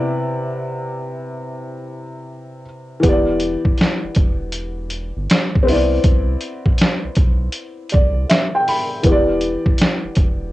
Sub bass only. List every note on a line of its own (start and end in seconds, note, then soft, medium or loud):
3.04 3.56 E1 loud
4.03 4.09 E1 medium
4.17 5.12 E1 medium
5.16 5.27 G1 medium
5.67 5.99 C2 loud
6.05 6.36 C2 loud
7.04 7.09 B1 medium
7.17 7.49 B1 medium
7.94 8.25 C2 medium
9.05 9.56 E1 loud
10.04 10.09 E1 medium
10.17 10.52 E1 loud